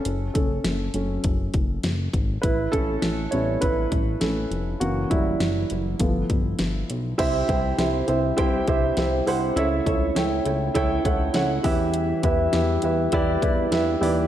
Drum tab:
CC |--------|--------|--------|x-------|
HH |xxxxxxxx|xxxxxxxx|xxxxxxxx|xxxxxxxo|
SD |--o---o-|--o---o-|--o---o-|--o---o-|
BD |-o--oo-o|oo--oo--|-o--oo--|oo--oo--|

CC |--------|--------|
HH |xxxxxxxo|xxxxxxxo|
SD |--o---o-|--o---o-|
BD |-o--oo-o|-o--oo--|